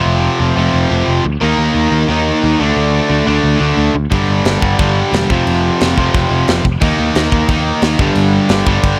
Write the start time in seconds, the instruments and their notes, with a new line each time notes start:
Already playing: overdriven electric guitar F2 C3 F3
0.06 picked electric bass F1
0.39 picked electric bass F1, overdriven electric guitar F2 C3 F3
0.56 picked electric bass F1, distorted electric guitar F2 C3 F3
0.74 picked electric bass F1
0.90 picked electric bass F1, overdriven electric guitar F2 C3 F3
1.08 picked electric bass F1
1.25 picked electric bass D2
1.40 picked electric bass D#2, overdriven electric guitar D#3 A#3 D#4
1.58 picked electric bass D#2
1.75 picked electric bass D#2
1.91 picked electric bass D#2, overdriven electric guitar D#3 A#3 D#4
2.08 picked electric bass D#2, distorted electric guitar D#3 A#3 D#4
2.42 picked electric bass D#2, overdriven electric guitar D#3 A#3 D#4
2.59 picked electric bass D2, overdriven electric guitar D3 A3 D4
2.77 picked electric bass D2
3.09 picked electric bass D2, overdriven electric guitar D3 A3 D4
3.27 picked electric bass D2, distorted electric guitar D3 A3 D4
3.44 picked electric bass D2
3.60 picked electric bass D2, overdriven electric guitar D3 A3 D4
3.77 picked electric bass D2
3.95 picked electric bass D2
4.10 picked electric bass G1, overdriven electric guitar G2 D3 G3, kick, crash
4.28 picked electric bass G1
4.45 picked electric bass G1, snare, crash
4.61 picked electric bass G1, overdriven electric guitar G2 D3 G3, kick
4.78 picked electric bass G1, distorted electric guitar G2 D3 G3, kick, crash
5.11 picked electric bass E1, overdriven electric guitar G2 D3 G3, snare, crash
5.29 picked electric bass F1, overdriven electric guitar F2 C3 F3, kick
5.47 picked electric bass F1, crash
5.79 picked electric bass F1, overdriven electric guitar F2 C3 F3, snare, crash
5.97 picked electric bass F1, distorted electric guitar F2 C3 F3, kick
6.14 picked electric bass F1, kick, crash
6.30 picked electric bass F1, overdriven electric guitar F2 C3 F3
6.48 picked electric bass F1, snare, crash
6.65 picked electric bass F1, kick
6.80 picked electric bass D#2, overdriven electric guitar D#3 A#3 D#4, kick, crash
6.99 picked electric bass D#2
7.15 picked electric bass D#2, snare, crash
7.31 picked electric bass D#2, overdriven electric guitar D#3 A#3 D#4, kick
7.49 picked electric bass D#2, distorted electric guitar D#3 A#3 D#4, kick, crash
7.81 picked electric bass D#2, overdriven electric guitar D#3 A#3 D#4, snare, crash
7.98 picked electric bass G1, overdriven electric guitar G2 D3 G3, kick
8.15 picked electric bass G1, crash
8.49 picked electric bass G1, overdriven electric guitar G2 D3 G3, snare, crash
8.66 picked electric bass G1, distorted electric guitar G2 D3 G3, kick
8.83 picked electric bass G1, kick, crash